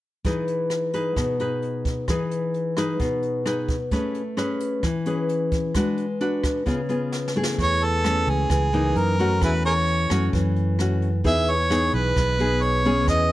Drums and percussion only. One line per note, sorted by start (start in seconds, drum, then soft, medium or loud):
0.25 kick soft
0.25 closed hi-hat soft
0.48 closed hi-hat soft
0.70 cross-stick soft
0.70 closed hi-hat soft
0.94 closed hi-hat soft
1.16 kick soft
1.16 cross-stick soft
1.16 closed hi-hat soft
1.40 closed hi-hat soft
1.62 closed hi-hat soft
1.85 kick soft
1.85 closed hi-hat soft
2.08 kick soft
2.08 cross-stick soft
2.08 closed hi-hat medium
2.31 closed hi-hat soft
2.54 closed hi-hat soft
2.77 cross-stick medium
2.77 closed hi-hat soft
3.00 kick soft
3.00 closed hi-hat soft
3.23 closed hi-hat soft
3.46 cross-stick soft
3.46 closed hi-hat soft
3.68 kick medium
3.68 closed hi-hat soft
3.91 kick soft
3.91 closed hi-hat soft
4.15 closed hi-hat soft
4.37 cross-stick soft
4.37 closed hi-hat soft
4.60 closed hi-hat soft
4.83 kick soft
4.83 cross-stick soft
4.83 closed hi-hat soft
5.06 closed hi-hat soft
5.29 closed hi-hat soft
5.52 kick medium
5.52 closed hi-hat soft
5.75 kick soft
5.75 cross-stick soft
5.75 closed hi-hat medium
5.98 closed hi-hat soft
6.21 closed hi-hat soft
6.44 kick medium
6.44 cross-stick medium
6.44 closed hi-hat soft
6.66 kick soft
6.66 closed hi-hat soft
6.90 closed hi-hat soft
7.12 snare soft
7.28 snare soft
7.43 snare soft
7.59 kick soft
7.59 closed hi-hat soft
7.82 closed hi-hat soft
8.04 cross-stick medium
8.04 closed hi-hat soft
8.28 closed hi-hat soft
8.50 kick soft
8.50 cross-stick soft
8.50 closed hi-hat soft
8.73 closed hi-hat soft
8.96 closed hi-hat soft
9.19 closed hi-hat soft
9.41 kick medium
9.41 cross-stick soft
9.41 closed hi-hat soft
9.65 closed hi-hat soft
9.87 closed hi-hat soft
10.10 cross-stick medium
10.10 closed hi-hat soft
10.33 kick medium
10.33 closed hi-hat soft
10.56 closed hi-hat soft
10.79 cross-stick soft
10.79 closed hi-hat soft
11.02 closed hi-hat soft
11.24 kick medium
11.24 closed hi-hat soft
11.47 closed hi-hat soft
11.71 cross-stick soft
11.71 closed hi-hat soft
11.93 closed hi-hat soft
12.16 kick soft
12.16 cross-stick soft
12.16 closed hi-hat soft
12.40 closed hi-hat soft
12.62 closed hi-hat soft
12.85 closed hi-hat soft
13.07 kick medium
13.07 cross-stick medium
13.07 closed hi-hat soft